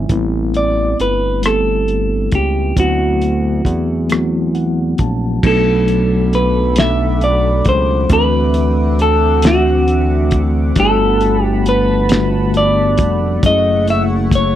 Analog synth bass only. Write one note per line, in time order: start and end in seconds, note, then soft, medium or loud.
0.10 0.95 A1 loud
1.00 2.29 G1 medium
2.33 2.73 C#2 medium
2.77 3.62 D2 loud
3.65 4.95 E2 medium
5.00 5.40 A#1 medium
5.44 7.62 B1 loud
7.66 8.06 C#2 medium
8.10 10.73 D2 loud
10.77 13.01 G1 loud
12.99 13.39 F1 medium
13.44 14.55 F#1 loud